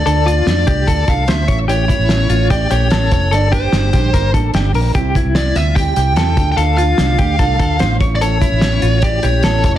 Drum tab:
HH |xxxxxxxx|xxxxxxxx|xxxxxxxo|xxxxxxxx|
SD |--o---o-|--o---o-|--oo--o-|--oo--o-|
BD |---ooo-o|-o--o--o|-o-ooo--|oo--o--o|

HH |xxxxxxxx|xxxxxxxx|
SD |--o---o-|--o---o-|
BD |---ooo-o|-o--o--o|